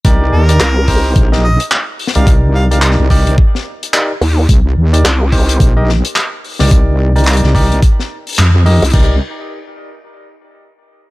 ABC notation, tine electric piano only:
X:1
M:4/4
L:1/16
Q:"Swing 16ths" 1/4=108
K:Cm
V:1 name="Tine electric piano"
[EGBd]3 [EGBd] z2 [EGBc]3 [EGBe] z4 z [EGBd]- | [EGBd]3 [EGBd]3 [EGBd]2 z4 [EGBd] z3 | z3 [EGBd] z2 [EGBc]3 [EGBe] z4 z [EGBd]- | [EGBd]3 [EGBd]3 [EGBd]2 z6 [EGBe] z |
[EGBd]2 z12 z2 |]